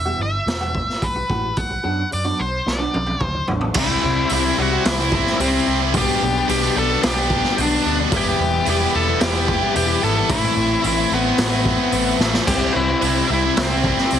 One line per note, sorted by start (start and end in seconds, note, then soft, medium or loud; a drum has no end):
0.00 0.21 E5 medium
0.05 0.24 E3 medium
0.05 0.24 G3 medium
0.05 0.23 B3 medium
0.05 0.23 F#4 medium
0.19 0.36 G1 medium
0.19 1.06 E5 loud
0.46 0.81 E1 medium
0.46 muted clean electric guitar stroke soft
0.46 snare loud
0.46 open hi-hat soft
0.61 0.79 E3 medium
0.61 0.79 G3 medium
0.61 0.79 B3 medium
0.61 0.78 F#4 medium
0.75 kick medium
0.90 snare soft
1.02 1.19 B1 medium
1.02 1.59 B4 medium
1.02 kick medium
1.02 open hi-hat soft
1.16 muted clean electric guitar stroke soft
1.29 1.47 A1 medium
1.29 1.47 E3 medium
1.29 1.47 G3 medium
1.29 1.47 B3 medium
1.29 1.48 F#4 medium
1.29 kick medium
1.56 1.74 B1 medium
1.56 2.08 F#5 medium
1.56 kick medium
1.56 open hi-hat soft
1.70 muted clean electric guitar stroke soft
1.83 2.02 F#2 medium
1.83 2.02 F#3 medium
1.83 2.02 B3 medium
1.83 2.02 D4 medium
1.83 2.02 F#4 medium
2.11 2.30 F#2 medium
2.11 2.41 D5 medium
2.11 muted clean electric guitar stroke soft
2.11 open hi-hat soft
2.25 2.43 F#3 medium
2.25 2.43 B3 medium
2.25 2.43 D4 medium
2.25 2.43 F#4 medium
2.40 2.57 B1 medium
2.40 2.68 C5 medium
2.66 2.84 B1 medium
2.66 3.24 D5 medium
2.66 muted clean electric guitar stroke soft
2.66 snare medium
2.78 2.98 F#3 medium
2.78 2.98 B3 medium
2.78 2.97 D4 medium
2.78 2.97 F#4 medium
2.94 3.12 B1 medium
2.94 high tom medium
3.06 high tom medium
3.20 3.38 D2 medium
3.20 kick medium
3.20 mid tom medium
3.24 3.46 C5 medium
3.34 muted clean electric guitar stroke soft
3.48 3.66 A1 medium
3.48 3.66 F#3 medium
3.48 3.66 B3 medium
3.48 3.66 D4 medium
3.48 3.66 F#4 medium
3.48 floor tom medium
3.61 floor tom medium
3.74 3.92 C2 loud
3.74 4.02 C3 loud
3.74 4.04 G3 loud
3.74 4.03 C4 medium
3.74 4.04 E4 loud
3.74 4.28 E4 medium
3.74 kick loud
3.74 crash loud
3.79 4.34 E5 loud
4.03 4.20 C2 medium
4.03 4.29 C3 medium
4.03 4.19 G3 medium
4.03 4.17 C4 medium
4.03 4.16 E4 medium
4.03 muted distorted electric guitar stroke soft
4.17 4.30 G3 medium
4.17 4.31 C4 medium
4.17 4.31 E4 medium
4.29 4.48 C2 medium
4.29 4.57 C3 loud
4.29 4.47 G3 medium
4.29 4.45 C4 loud
4.29 4.57 E4 medium
4.29 open hi-hat medium
4.33 4.43 E4 loud
4.33 4.61 E5 medium
4.44 4.58 G3 medium
4.44 4.58 C4 medium
4.44 4.59 E4 medium
4.58 4.75 C2 medium
4.58 4.99 C3 medium
4.58 4.75 G3 medium
4.58 4.73 C4 medium
4.58 4.71 E4 medium
4.58 4.84 F#4 medium
4.58 4.88 F#5 loud
4.72 5.01 G3 medium
4.72 4.99 C4 medium
4.72 4.97 E4 medium
4.85 5.19 C2 loud
4.85 5.36 E4 medium
4.85 5.42 E5 loud
4.85 snare loud
4.85 open hi-hat medium
4.99 5.13 G3 medium
4.99 5.13 C4 medium
4.99 5.14 E4 medium
5.12 5.38 C3 medium
5.12 5.39 G3 medium
5.12 5.39 C4 medium
5.12 5.40 E4 medium
5.12 kick loud
5.27 5.40 G3 medium
5.27 5.40 C4 medium
5.27 5.41 E4 medium
5.27 snare soft
5.39 5.56 C2 medium
5.39 5.66 C3 medium
5.39 5.55 G3 loud
5.39 5.78 C4 medium
5.39 5.53 C4 loud
5.39 5.51 E4 loud
5.39 5.78 C5 medium
5.39 open hi-hat medium
5.52 5.67 G3 medium
5.52 5.67 C4 medium
5.52 5.68 E4 medium
5.67 5.94 C2 medium
5.67 5.93 C3 medium
5.67 5.82 G3 medium
5.67 5.80 C4 medium
5.67 5.78 E4 medium
5.80 5.95 G3 medium
5.80 5.93 C4 medium
5.80 5.92 E4 medium
5.93 6.11 B1 loud
5.93 6.22 B2 medium
5.93 6.23 G3 loud
5.93 6.23 B3 loud
5.93 6.23 D4 loud
5.93 6.47 G4 medium
5.93 kick loud
5.93 open hi-hat medium
5.98 6.47 G5 medium
6.22 6.39 B1 medium
6.22 6.48 B2 medium
6.22 6.38 G3 medium
6.22 6.37 B3 medium
6.22 6.36 D4 medium
6.22 muted distorted electric guitar stroke soft
6.37 6.50 G3 medium
6.37 6.51 B3 medium
6.37 6.51 D4 medium
6.48 6.66 B1 medium
6.48 6.76 B2 loud
6.48 6.65 G3 loud
6.48 6.64 B3 loud
6.48 6.62 D4 loud
6.48 6.75 G4 medium
6.48 6.78 G5 loud
6.48 open hi-hat medium
6.63 6.77 G3 medium
6.63 6.78 B3 medium
6.63 6.79 D4 medium
6.76 6.93 B1 medium
6.76 7.17 B2 medium
6.76 6.91 G3 medium
6.76 6.91 B3 medium
6.76 6.88 D4 medium
6.76 7.02 A4 medium
6.76 7.05 A5 loud
6.89 7.20 G3 medium
6.89 7.20 B3 medium
6.89 7.17 D4 medium
7.03 7.37 B1 loud
7.03 7.54 G4 medium
7.03 7.59 G5 medium
7.03 snare loud
7.03 open hi-hat medium
7.18 7.31 G3 medium
7.18 7.33 B3 medium
7.18 7.33 D4 medium
7.30 7.57 B2 medium
7.30 7.58 G3 medium
7.30 7.60 B3 medium
7.30 kick medium
7.34 7.60 D4 loud
7.44 7.58 G3 medium
7.44 7.59 B3 medium
7.44 7.60 D4 medium
7.44 snare soft
7.58 7.75 B1 medium
7.58 7.84 B2 medium
7.58 7.73 G3 loud
7.58 7.73 B3 loud
7.58 7.70 D4 medium
7.58 7.98 D5 medium
7.58 open hi-hat medium
7.62 7.98 D4 medium
7.71 7.86 G3 medium
7.71 7.87 B3 medium
7.71 7.87 D4 medium
7.86 8.02 D2 medium
7.86 8.11 B2 medium
7.86 8.00 G3 medium
7.86 7.99 B3 medium
7.86 7.97 D4 medium
7.98 8.12 G3 medium
7.98 8.13 B3 medium
7.98 8.10 D4 medium
8.12 8.29 E1 loud
8.12 8.41 E3 loud
8.12 8.40 G3 loud
8.12 8.41 B3 loud
8.12 8.41 E4 loud
8.12 kick loud
8.12 open hi-hat medium
8.17 8.66 G4 medium
8.17 8.65 G5 loud
8.39 8.57 E1 medium
8.39 8.67 E3 medium
8.39 8.55 G3 medium
8.39 8.54 B3 medium
8.39 8.53 E4 medium
8.39 muted distorted electric guitar stroke soft
8.53 8.67 G3 medium
8.53 8.68 B3 medium
8.53 8.69 E4 medium
8.66 8.84 E1 medium
8.66 8.92 E3 loud
8.66 8.81 G3 loud
8.66 8.80 B3 loud
8.66 8.79 E4 loud
8.66 8.94 G4 medium
8.66 open hi-hat medium
8.70 8.94 G5 medium
8.79 8.92 G3 medium
8.79 8.94 B3 medium
8.79 8.95 E4 medium
8.92 9.11 E1 medium
8.92 9.48 E3 medium
8.92 9.08 G3 medium
8.92 9.07 B3 medium
8.92 9.06 E4 medium
8.92 9.20 A4 medium
8.92 9.20 A5 loud
9.06 9.36 G3 medium
9.06 9.35 B3 medium
9.06 9.34 E4 medium
9.21 9.55 E1 loud
9.21 9.72 G4 medium
9.21 9.75 G5 medium
9.21 snare loud
9.21 open hi-hat medium
9.34 9.49 G3 medium
9.34 9.50 B3 medium
9.34 9.52 E4 medium
9.48 9.74 E3 medium
9.48 9.75 G3 medium
9.48 9.76 B3 medium
9.48 9.77 E4 loud
9.48 kick medium
9.62 9.74 G3 medium
9.62 9.75 B3 medium
9.62 9.77 E4 medium
9.75 9.93 E1 medium
9.75 10.01 E3 medium
9.75 9.90 G3 loud
9.75 9.89 B3 loud
9.75 9.88 E4 loud
9.75 10.02 G4 medium
9.75 10.03 G5 loud
9.75 open hi-hat medium
9.88 10.01 G3 medium
9.88 10.02 B3 medium
9.88 10.04 E4 medium
10.01 10.20 G#1 medium
10.01 10.28 E3 medium
10.01 10.16 G3 medium
10.01 10.15 B3 medium
10.01 10.14 E4 medium
10.01 10.29 A4 medium
10.01 10.31 A5 loud
10.14 10.29 G3 medium
10.14 10.28 B3 medium
10.14 10.30 E4 medium
10.28 10.47 A1 loud
10.28 10.80 A2 medium
10.28 10.55 E3 loud
10.28 10.55 A3 loud
10.28 10.56 C4 loud
10.28 10.56 E4 loud
10.28 10.81 E4 medium
10.28 10.85 E5 medium
10.28 kick loud
10.28 open hi-hat medium
10.56 10.74 A1 medium
10.56 10.84 E3 medium
10.56 10.72 A3 medium
10.56 10.72 C4 medium
10.56 10.71 E4 medium
10.56 muted distorted electric guitar stroke soft
10.71 10.84 A3 medium
10.71 10.85 C4 medium
10.71 10.86 E4 medium
10.81 11.01 A1 loud
10.81 11.24 A2 loud
10.81 11.09 E3 loud
10.81 10.98 A3 loud
10.81 10.98 C4 loud
10.81 10.96 E4 loud
10.81 open hi-hat medium
10.87 11.12 E4 medium
10.87 11.14 E5 medium
10.96 11.10 A3 medium
10.96 11.11 C4 medium
10.96 11.13 E4 medium
11.10 11.28 A1 medium
11.10 11.52 E3 medium
11.10 11.26 A3 medium
11.10 12.18 B3 medium
11.10 11.24 C4 medium
11.10 11.23 E4 medium
11.10 12.18 B4 medium
11.24 11.51 A3 medium
11.24 11.51 C4 medium
11.24 11.49 E4 medium
11.38 11.72 A1 loud
11.38 snare loud
11.38 open hi-hat medium
11.50 11.64 A3 medium
11.50 11.65 C4 medium
11.50 11.66 E4 medium
11.64 11.91 E3 medium
11.64 11.92 A3 medium
11.64 11.93 C4 medium
11.64 11.93 E4 medium
11.64 kick medium
11.78 11.93 A3 medium
11.78 11.93 C4 medium
11.78 11.94 E4 medium
11.92 12.10 A1 medium
11.92 12.34 A2 medium
11.92 12.17 E3 loud
11.92 12.07 A3 loud
11.92 12.05 C4 loud
11.92 12.04 E4 loud
11.92 open hi-hat medium
12.05 12.19 A3 medium
12.05 12.20 C4 medium
12.05 12.20 E4 medium
12.18 12.36 A1 medium
12.18 12.45 E3 medium
12.18 12.35 A3 medium
12.18 12.33 C4 medium
12.18 12.31 E4 medium
12.18 snare medium
12.32 12.46 A3 medium
12.32 12.46 C4 medium
12.32 12.45 E4 medium
12.32 snare medium
12.46 12.64 C2 loud
12.46 12.74 C3 loud
12.46 12.75 G3 medium
12.46 12.74 C4 medium
12.46 12.74 E4 loud
12.46 12.73 G4 medium
12.46 12.76 G5 loud
12.46 kick loud
12.46 splash medium
12.46 crash loud
12.74 12.92 C2 medium
12.74 13.02 C3 medium
12.74 12.90 G3 medium
12.74 12.89 C4 medium
12.74 13.25 E4 medium
12.74 12.87 E4 medium
12.74 13.32 E5 loud
12.74 muted distorted electric guitar stroke soft
12.89 13.03 G3 medium
12.89 13.03 C4 medium
12.89 13.03 E4 medium
13.01 13.19 C2 medium
13.01 13.27 C3 medium
13.01 13.17 G3 loud
13.01 13.15 C4 loud
13.01 13.14 E4 loud
13.01 open hi-hat medium
13.15 13.29 G3 medium
13.15 13.29 C4 medium
13.15 13.30 E4 medium
13.28 13.47 C2 medium
13.28 13.70 C3 medium
13.28 13.45 G3 medium
13.28 13.43 C4 medium
13.28 13.56 E4 medium
13.28 13.41 E4 medium
13.33 13.60 E5 loud
13.43 13.73 G3 medium
13.43 13.70 C4 medium
13.43 13.69 E4 medium
13.57 13.91 C2 loud
13.57 14.19 C4 medium
13.57 snare loud
13.57 open hi-hat medium
13.63 14.19 C5 medium
13.70 13.84 G3 medium
13.70 13.85 C4 medium
13.70 13.85 E4 medium
13.84 14.09 C3 medium
13.84 14.11 G3 medium
13.84 14.11 C4 medium
13.84 14.12 E4 loud
13.84 kick loud
13.98 14.13 G3 medium
13.98 14.13 C4 medium
13.98 14.14 E4 medium
13.98 snare soft
14.10 14.19 C2 medium
14.10 14.19 C3 loud
14.10 14.19 G3 loud
14.10 14.19 C4 loud
14.10 14.19 E4 medium
14.10 open hi-hat medium